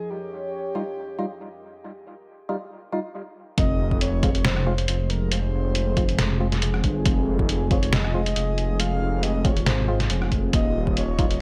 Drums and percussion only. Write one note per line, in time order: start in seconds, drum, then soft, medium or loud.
3.58 kick loud
3.58 closed hi-hat medium
3.91 kick medium
4.01 closed hi-hat medium
4.23 kick loud
4.23 closed hi-hat medium
4.35 closed hi-hat medium
4.45 snare loud
4.45 closed hi-hat medium
4.56 cross-stick medium
4.78 closed hi-hat medium
4.88 closed hi-hat medium
5.10 closed hi-hat medium
5.32 closed hi-hat medium
5.75 closed hi-hat medium
5.97 kick loud
5.97 closed hi-hat medium
6.09 closed hi-hat medium
6.19 snare loud
6.19 closed hi-hat medium
6.52 snare soft
6.52 closed hi-hat medium
6.62 closed hi-hat medium
6.74 cross-stick medium
6.84 kick medium
6.84 closed hi-hat medium
7.06 kick loud
7.06 closed hi-hat medium
7.39 kick medium
7.49 closed hi-hat medium
7.71 kick loud
7.71 closed hi-hat medium
7.83 closed hi-hat medium
7.93 snare loud
7.93 closed hi-hat medium
8.05 cross-stick medium
8.26 closed hi-hat medium
8.36 closed hi-hat medium
8.58 closed hi-hat medium
8.80 closed hi-hat medium
9.23 closed hi-hat medium
9.45 kick loud
9.45 closed hi-hat medium
9.57 closed hi-hat medium
9.66 snare loud
9.66 closed hi-hat medium
10.00 snare soft
10.00 closed hi-hat medium
10.10 closed hi-hat medium
10.22 cross-stick medium
10.32 kick medium
10.32 closed hi-hat soft
10.53 kick loud
10.53 closed hi-hat medium
10.87 kick medium
10.97 closed hi-hat medium
11.19 kick loud
11.19 closed hi-hat medium
11.31 closed hi-hat medium